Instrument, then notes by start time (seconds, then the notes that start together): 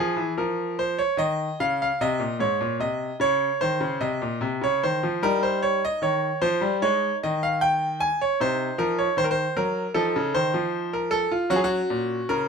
grand piano
Already playing: F3 G#4
0.16 E3
0.38 F3 A#4
0.79 C5
0.99 C#5
1.17 D#3 D#5
1.60 C#3 F5
1.82 F5
2.01 C3 D#5
2.19 A#2
2.39 G#2 C#5
2.61 A#2
2.80 C3 D#5
3.20 C#3 C#5
3.61 D#3 C5
3.81 C#3
4.00 C3 D#5
4.22 A#2
4.41 C3
4.61 C#3 C#5
4.83 D#3 C5
5.03 F3
5.22 G3 D#4 A#4
5.43 C5
5.63 C#5
5.85 D#5
6.02 D#3 C#5
6.42 F3 C5
6.61 G3
6.82 G#3 D#4 C#5
7.23 D#3 D#5
7.43 F5
7.61 G5
8.00 G#5
8.21 C#5
8.40 C3 D#4 C5
8.78 F3 A#4
8.99 C#5
9.17 D#3 C5
9.24 A#4
9.31 C5
9.56 F#3 A#4
9.94 F3 D#4 A4
10.16 C#3
10.34 D#3 C5
10.54 F3
10.93 A#4
11.11 A4
11.32 F4
11.50 F#3 C#4 F#4
11.56 G#4
11.64 F#4
11.90 A#2
12.29 C#3 A#4